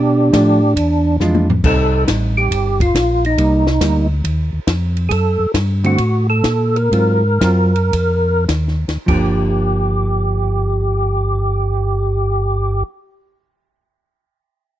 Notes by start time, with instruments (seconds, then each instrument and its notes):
Already playing: tonewheel organ B2 D4 G4
0.32 tonewheel organ A2, hollow-body jazz guitar F3 A3 D4, kick, snare, hi-hat pedal, ride
0.76 tonewheel organ E2, kick, ride
1.20 tonewheel organ F2, hollow-body jazz guitar E3 G#3 D4 F4, snare, hi-hat pedal
1.34 high tom
1.50 floor tom
1.64 tonewheel organ C2 A4, hollow-body jazz guitar G3 C4 D#4, kick, crash
2.07 tonewheel organ A1, kick, snare, hi-hat pedal, ride
2.37 tonewheel organ G4
2.51 tonewheel organ G1, kick, ride
2.80 tonewheel organ F4, kick, ride
2.94 tonewheel organ A#1, kick, snare, hi-hat pedal, ride
3.25 tonewheel organ D#4, ride
3.38 tonewheel organ C2, hollow-body jazz guitar G3 A#3 D#4, kick, ride
3.67 snare
3.81 tonewheel organ D2, hollow-body jazz guitar G3 A#3 D#4, kick, snare, hi-hat pedal, ride
4.24 tonewheel organ D#2, kick, ride
4.53 tonewheel organ D#2
4.67 tonewheel organ F2, kick, snare, hi-hat pedal, ride
4.97 ride
5.09 tonewheel organ F#2 G#4 A4, kick, ride
5.39 tonewheel organ F#2
5.54 tonewheel organ G2, kick, snare, hi-hat pedal, ride
5.84 hollow-body jazz guitar D3 A3 C4 F#4, tonewheel organ F#4, ride
5.98 tonewheel organ A2, kick, ride
6.30 tonewheel organ A4
6.43 tonewheel organ A#2, kick, snare, hi-hat pedal, ride
6.76 tonewheel organ A#4, ride
6.91 tonewheel organ G#2, hollow-body jazz guitar F#3 C4 F4, kick, ride
7.41 tonewheel organ F#2, hollow-body jazz guitar F#3 C4 F4, kick, snare, hi-hat pedal, ride
7.76 ride
7.93 tonewheel organ F2, kick, ride
8.48 tonewheel organ D#2, kick, snare, hi-hat pedal, ride
8.68 snare
8.88 tonewheel organ D#2, snare, ride
9.06 tonewheel organ G1 G4, hollow-body jazz guitar F3 A#3 D4, kick, crash